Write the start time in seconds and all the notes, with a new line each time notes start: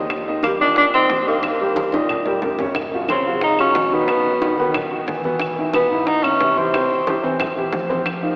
Already playing: D#2 D#3 D#4 D#5
0.10 high bongo, high conga, claves
0.27 D#3 D#4 D#5, high conga
0.43 G3 A#3 G4 A#4, high bongo, high conga, claves
0.60 A#2 D#3 D4 D#4 D#5
0.76 D4, high bongo, high conga
0.94 D#3 C4 D#4 D#5, high conga, claves
1.10 D#2, high bongo, low bongo, high conga
1.27 D#3 A#3 D#4 D#5
1.43 D#3 D#4 D#5, high bongo, high conga, claves
1.60 G3 G4 A#4, high bongo, high conga
1.76 high bongo, high conga
1.92 A#2 D#3 D#4 D#5, high bongo, high conga
2.09 low conga, claves
2.26 G3 G4 A#4, low bongo
2.42 F#2 G3 G4 A#4, low bongo, low conga
2.59 C#3 C#4 C#5, low bongo, low conga
2.75 high bongo, high conga, claves
2.93 F3 F4 F#4, high conga
3.08 C#3 C4 C#4 C#5, high bongo, high conga, claves
3.25 C#3 F#3 F4 F#4
3.41 D#4, high bongo, high conga
3.59 F#3 C#4 F4 F#4, high conga, claves
3.75 B2, high bongo, low bongo, high conga
3.92 D#3 B3 D#4 F#4, high conga
4.08 B2 B3 B4, high bongo, high conga, claves
4.25 high bongo, high conga
4.42 D#3 D#4 F#4, high bongo, high conga
4.57 B2 D#3 B3 B4, high bongo, high conga
4.74 high bongo, high conga, low conga, claves
4.91 D#3 D#4 F#4, high conga
5.07 E3, high bongo, low bongo, high conga
5.24 B2 B3 B4, high bongo, high conga
5.40 high bongo, high conga, claves
5.58 D#3 D#4 E4, high conga
5.73 B2 B3 B4, high bongo, high conga, claves
5.90 G#2 E3 D#4 E4
6.07 D#4, high bongo, high conga
6.24 E3 C#4 D#4 E4, high conga, claves
6.40 C3, high bongo, low bongo, high conga
6.57 E3 C4 E4 G4, high conga
6.74 C3 C4 C5, high bongo, high conga, claves
6.91 high bongo, high conga
7.07 E3 E4 G4, high bongo, high conga
7.23 C3 E3 C4 C5, high bongo, high conga
7.40 high bongo, high conga, low conga, claves
7.56 E3 E4 G4, high conga, low conga
7.73 F3, high bongo, low bongo, high conga
7.89 C3 C4 C5, high bongo, high conga
8.06 high bongo, high conga, claves
8.23 D#3 D#4 F4, high conga